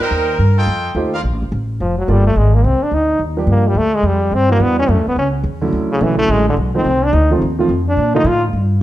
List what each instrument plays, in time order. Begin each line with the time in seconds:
0.01 trumpet section D#4 A#4 C5 G5, saxophone section A#4
0.11 upright bass D#2
0.39 upright bass G2
0.57 trumpet section F4 A4 D#5 G5
0.67 upright bass F2
0.95 upright bass D#2, grand piano A3 D#4 F4 G4 C5
1.13 trumpet section F4 A#4 D5 F5
1.23 upright bass A#1
1.32 upright bass A1
1.42 upright bass F1
1.52 upright bass A1
1.80 upright bass F1, trombone F3
1.98 trombone F#3
2.08 upright bass G1, trombone G3, grand piano A#3 D4 F4 A4 D5
2.27 trombone A3
2.36 upright bass G#1, trombone G#3
2.54 trombone A#3
2.64 upright bass C2, trombone C4
2.81 trombone D4, muted upright bass stroke
2.91 upright bass D2, trombone D#4
3.19 upright bass D#2
3.37 grand piano F3 G3 A#3 D4 G4
3.47 upright bass G2, trombone A#3
3.68 trombone G3
3.75 upright bass D2, trombone A3
3.95 trombone G#3
4.03 upright bass F2, trombone G3
4.31 upright bass G2, trombone C4
4.49 grand piano E3 G3 B3 D4 F#4, trombone A#3
4.60 upright bass E2, trombone B3
4.79 trombone C#4
4.88 upright bass F#2, trombone A3
4.97 upright bass E2
5.07 upright bass D2, trombone B3
5.16 upright bass C#2, trombone C#4
5.43 upright bass E2
5.61 grand piano D3 F#3 A3 C#4 E4
5.73 upright bass D2
5.91 trombone C#3
6.01 upright bass B1, grand piano D3 F#3 A3 C#4 E4, trombone E3
6.19 trombone A3
6.28 upright bass A1, trombone G#3
6.49 trombone D3
6.57 upright bass B1
6.74 grand piano D#3 F3 A3 C4 D#4, trombone C4
6.84 upright bass C2
7.05 trombone D4
7.13 upright bass D2, trombone D#4
7.30 grand piano D#3 F3 A3 C4 F4
7.41 upright bass D#2
7.59 grand piano D#3 F3 A3 C4 F4
7.69 upright bass F2
7.89 trombone D4
7.97 upright bass A#2
8.14 grand piano D3 F3 A3 A#3 F4, trombone D#4
8.24 upright bass A2, trombone F4
8.53 upright bass G2